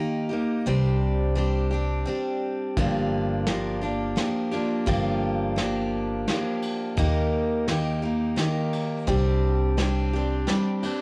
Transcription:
0.00 0.31 D#3 soft
0.00 0.31 A#3 medium
0.00 0.30 D#4 medium
0.00 0.28 G4 medium
0.29 0.66 A#3 soft
0.29 0.66 D#4 soft
0.29 0.65 G4 soft
0.66 2.03 C2 medium
0.66 1.36 C3 medium
0.66 1.35 G3 medium
0.66 1.35 C4 medium
0.66 1.37 D4 medium
0.66 1.38 G4 medium
1.35 1.71 G3 medium
1.35 1.72 C4 medium
1.35 1.71 D4 medium
1.35 1.69 G4 medium
1.71 2.06 C4 soft
1.71 2.07 D4 soft
1.71 2.06 G4 soft
2.05 2.77 G3 medium
2.05 2.77 C4 medium
2.05 2.78 D4 medium
2.05 2.79 G4 medium
2.77 4.14 G1 medium
2.77 3.47 G2 medium
2.77 3.47 D3 medium
2.77 3.45 F3 medium
2.77 3.47 A#3 medium
2.77 3.47 D4 medium
2.77 3.49 G4 medium
2.77 kick medium
2.77 ride soft
3.46 3.82 F3 medium
3.46 3.82 A#3 medium
3.46 3.81 D4 medium
3.46 3.80 G4 medium
3.46 snare medium
3.46 ride soft
3.81 4.15 F3 soft
3.81 4.15 A#3 soft
3.81 4.17 D4 soft
3.81 4.17 G4 soft
4.16 4.52 F3 medium
4.16 4.52 A#3 medium
4.16 4.52 D4 medium
4.16 4.50 G4 medium
4.16 snare medium
4.16 ride soft
4.52 4.86 F3 soft
4.52 4.86 A#3 soft
4.52 4.87 D4 soft
4.52 4.87 G4 soft
4.52 ride soft
4.86 6.24 G1 medium
4.86 5.57 G2 medium
4.86 5.58 D3 medium
4.86 5.55 F3 medium
4.86 5.57 A#3 medium
4.86 5.57 D4 medium
4.86 5.59 G4 medium
4.86 kick medium
4.86 ride soft
5.56 6.26 F3 medium
5.56 6.28 A#3 medium
5.56 6.28 D4 medium
5.56 6.30 G4 medium
5.56 snare medium
5.56 ride soft
6.27 6.96 F3 medium
6.27 6.97 A#3 medium
6.27 6.98 D4 soft
6.27 6.99 G4 medium
6.27 snare medium
6.27 ride soft
6.62 ride soft
6.97 8.34 D#2 medium
6.97 7.67 D#3 medium
6.97 7.68 A#3 medium
6.97 7.68 D#4 medium
6.97 7.71 G4 medium
6.97 kick loud
6.97 ride soft
7.68 8.03 D#3 medium
7.68 8.04 A#3 medium
7.68 8.02 D#4 medium
7.68 8.01 G4 medium
7.68 snare medium
7.68 ride soft
8.02 8.36 A#3 soft
8.02 8.38 D#4 soft
8.02 8.38 G4 soft
8.36 9.07 D#3 medium
8.36 9.08 A#3 medium
8.36 9.08 D#4 medium
8.36 9.07 G4 medium
8.36 snare medium
8.36 ride soft
8.73 ride soft
9.07 10.44 C2 medium
9.07 9.78 C3 medium
9.07 9.76 G3 medium
9.07 9.78 C4 medium
9.07 9.78 D4 medium
9.07 9.78 G4 medium
9.07 kick medium
9.07 ride medium
9.77 10.13 G3 medium
9.77 10.13 C4 medium
9.77 10.14 D4 medium
9.77 10.12 G4 medium
9.77 snare medium
9.77 ride soft
10.13 10.47 C4 soft
10.13 10.48 D4 soft
10.13 10.48 G4 soft
10.47 10.83 G3 medium
10.47 10.83 C4 medium
10.47 10.83 D4 medium
10.47 10.82 G4 medium
10.47 snare medium
10.47 ride soft
10.83 11.02 C4 soft
10.83 11.02 D4 soft
10.83 11.02 G4 soft
10.83 ride medium

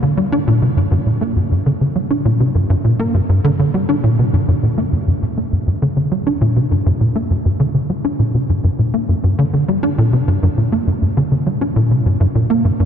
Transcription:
0.03 0.13 D3 medium
0.17 0.28 G3 medium
0.32 0.39 D4 medium
0.47 0.61 A#2 loud
0.62 0.73 C3 medium
0.77 0.88 G2 medium
0.91 0.98 G2 loud
1.06 1.17 A#2 medium
1.21 1.35 A#3 medium
1.36 1.43 G2 medium
1.51 1.62 G2 medium
1.66 1.73 D3 loud
1.81 1.92 D3 medium
1.96 2.07 G3 medium
2.10 2.17 D4 medium
2.25 2.39 A#2 loud
2.40 2.51 C3 medium
2.55 2.66 G2 medium
2.70 2.76 G2 loud
2.84 2.95 A#2 medium
2.99 3.14 A#3 medium
3.14 3.21 G2 medium
3.29 3.40 G2 medium
3.44 3.51 D3 loud
3.59 3.70 D3 medium
3.74 3.85 G3 medium
3.89 3.95 D4 medium
4.04 4.18 A#2 loud
4.19 4.30 C3 medium
4.33 4.44 G2 medium
4.48 4.55 G2 loud
4.63 4.74 A#2 medium
4.78 4.92 A#3 medium
4.92 4.99 G2 medium
5.08 5.14 G2 loud
5.22 5.33 A#2 medium
5.37 5.52 A#3 medium
5.52 5.59 G2 medium
5.67 5.78 G2 medium
5.82 5.89 D3 loud
5.97 6.08 D3 medium
6.12 6.22 G3 medium
6.27 6.33 D4 medium
6.41 6.55 A#2 loud
6.56 6.67 C3 medium
6.71 6.82 G2 medium
6.86 6.92 G2 loud
7.01 7.12 A#2 medium
7.16 7.30 A#3 medium
7.30 7.37 G2 medium
7.45 7.56 G2 medium
7.60 7.66 D3 loud
7.74 7.85 D3 medium
7.90 8.01 G3 medium
8.05 8.11 D4 medium
8.19 8.34 A#2 loud
8.34 8.45 C3 medium
8.49 8.60 G2 medium
8.64 8.71 G2 medium
8.79 8.90 A#2 medium
8.94 9.08 A#3 medium
9.09 9.15 G2 medium
9.24 9.34 G2 medium
9.39 9.45 D3 loud
9.54 9.64 D3 medium
9.68 9.79 G3 medium
9.83 9.89 D4 medium
9.98 10.12 A#2 loud
10.13 10.24 C3 medium
10.28 10.38 G2 medium
10.43 10.49 G2 loud
10.58 10.68 A#2 medium
10.72 10.86 A#3 medium
10.87 10.93 G2 medium
11.02 11.13 G2 medium
11.17 11.23 D3 loud
11.32 11.42 D3 medium
11.47 11.57 G3 medium
11.61 11.68 D4 medium
11.76 11.90 A#2 loud
11.91 12.02 C3 medium
12.06 12.17 G2 medium
12.20 12.27 G2 loud
12.35 12.46 A#2 medium
12.50 12.64 A#3 medium
12.65 12.71 G2 medium
12.80 12.85 G2 medium

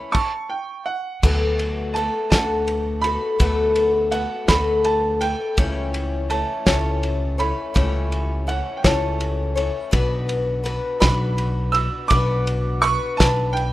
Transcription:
0.00 0.15 E3 medium
0.00 0.15 A3 medium
0.00 0.15 C#4 medium
0.00 0.15 C#5 medium
0.00 0.15 B5 medium
0.12 0.47 A5 medium
0.12 0.91 C#6 medium
0.12 kick loud
0.12 crash medium
0.50 0.84 G5 medium
0.86 1.98 F#5 medium
1.23 2.07 D2 medium
1.23 1.95 D3 medium
1.23 1.96 F#3 medium
1.23 1.97 A3 medium
1.23 1.95 B3 medium
1.23 1.96 F#4 medium
1.23 1.97 A4 medium
1.23 kick loud
1.23 crash loud
1.59 ride medium
1.94 2.31 A3 medium
1.94 2.32 B3 medium
1.94 2.30 A4 medium
1.94 2.29 A5 medium
1.94 ride medium
1.98 2.31 F#4 medium
2.30 3.16 D2 loud
2.30 3.05 D3 medium
2.30 3.05 F#3 medium
2.30 3.05 A3 medium
2.30 3.05 B3 medium
2.30 3.03 F#4 medium
2.30 3.05 A4 medium
2.30 2.99 A5 medium
2.30 kick medium
2.30 snare loud
2.30 ride medium
2.68 ride medium
3.01 3.40 F#4 medium
3.01 3.40 A4 medium
3.01 4.15 B5 loud
3.01 ride medium
3.06 3.40 A3 soft
3.06 3.39 B3 soft
3.40 4.24 D2 medium
3.40 4.12 D3 medium
3.40 4.13 F#3 medium
3.40 4.12 A3 medium
3.40 4.11 B3 medium
3.40 4.13 F#4 medium
3.40 4.13 A4 medium
3.40 kick loud
3.40 ride medium
3.76 ride medium
4.11 4.49 A3 medium
4.11 4.49 B3 medium
4.11 4.48 F#4 medium
4.11 4.49 A4 medium
4.11 4.49 F#5 medium
4.11 ride medium
4.48 5.33 D2 loud
4.48 5.22 D3 medium
4.48 5.22 F#3 medium
4.48 5.22 A3 medium
4.48 5.22 B3 medium
4.48 5.21 F#4 medium
4.48 5.22 A4 medium
4.48 4.86 B5 loud
4.48 kick medium
4.48 snare loud
4.48 ride medium
4.84 5.19 A5 medium
4.84 ride medium
5.21 5.57 A3 soft
5.21 5.58 B3 soft
5.21 5.58 A4 soft
5.21 6.26 G5 loud
5.21 ride medium
5.57 6.42 C#2 medium
5.57 6.30 C#3 medium
5.57 6.29 E3 medium
5.57 6.30 G3 medium
5.57 6.29 A3 medium
5.57 6.30 C#4 medium
5.57 6.30 C#5 medium
5.57 kick loud
5.57 ride medium
5.94 ride medium
6.30 6.66 E3 medium
6.30 6.66 A3 medium
6.30 6.65 C#4 medium
6.30 6.65 C#5 medium
6.30 6.65 A5 medium
6.30 ride medium
6.66 7.51 C#2 loud
6.66 7.40 C#3 medium
6.66 7.39 E3 medium
6.66 7.39 G3 medium
6.66 7.38 A3 medium
6.66 7.37 C#4 medium
6.66 7.37 C#5 medium
6.66 7.35 A5 medium
6.66 kick medium
6.66 snare loud
6.66 ride medium
7.03 ride medium
7.38 7.74 E3 soft
7.38 7.74 A3 soft
7.38 7.75 C#4 soft
7.38 7.75 C#5 medium
7.38 8.51 B5 medium
7.38 ride medium
7.74 8.60 C#2 medium
7.74 8.47 C#3 medium
7.74 8.46 E3 medium
7.74 8.48 G3 medium
7.74 8.46 A3 medium
7.74 8.48 C#4 medium
7.74 8.48 C#5 medium
7.74 kick loud
7.74 ride medium
8.12 ride medium
8.47 8.83 E3 medium
8.47 8.84 A3 medium
8.47 8.83 C#4 medium
8.47 8.83 C#5 medium
8.47 8.78 F#5 medium
8.47 ride medium
8.77 8.84 G5 medium
8.84 9.69 C#2 loud
8.84 9.57 C#3 medium
8.84 9.57 E3 medium
8.84 9.58 G3 medium
8.84 9.56 A3 medium
8.84 9.56 C#4 medium
8.84 9.54 C#5 medium
8.84 9.63 A5 medium
8.84 kick medium
8.84 snare loud
8.84 ride medium
9.21 ride medium
9.56 9.92 E3 soft
9.56 9.92 A3 soft
9.56 9.93 C#4 soft
9.56 9.93 C#5 medium
9.56 ride medium
9.91 10.78 B1 medium
9.91 10.65 B2 medium
9.91 10.63 B3 medium
9.91 10.64 D4 medium
9.91 10.64 F#4 medium
9.91 10.65 B4 medium
9.91 kick loud
9.91 ride medium
10.29 ride medium
10.64 11.00 B3 medium
10.64 11.00 D4 medium
10.64 11.00 F#4 medium
10.64 10.99 B4 medium
10.64 ride medium
11.00 11.87 B1 loud
11.00 11.75 B2 medium
11.00 12.11 B3 medium
11.00 11.76 D4 medium
11.00 11.74 F#4 medium
11.00 11.73 B4 medium
11.00 11.76 B5 loud
11.00 kick medium
11.00 snare loud
11.00 ride medium
11.38 ride medium
11.72 12.10 D4 soft
11.72 12.11 F#4 soft
11.72 12.11 B4 medium
11.72 12.07 E6 loud
11.72 ride medium
12.08 12.95 B1 medium
12.08 12.84 B2 medium
12.08 12.82 B3 medium
12.08 12.83 D4 medium
12.08 12.82 F#4 medium
12.08 12.84 B4 medium
12.08 12.85 D6 loud
12.08 kick loud
12.08 ride medium
12.47 ride medium
12.82 13.19 B3 medium
12.82 13.19 D4 medium
12.82 13.20 F#4 medium
12.82 13.19 B4 medium
12.82 13.17 C#6 loud
12.82 ride medium
13.17 13.73 B1 loud
13.17 13.73 B3 medium
13.17 13.73 D4 medium
13.17 13.73 B4 medium
13.17 13.53 A5 loud
13.17 kick medium
13.17 snare loud
13.17 ride medium
13.21 13.73 B2 medium
13.53 13.73 G5 medium
13.53 ride medium

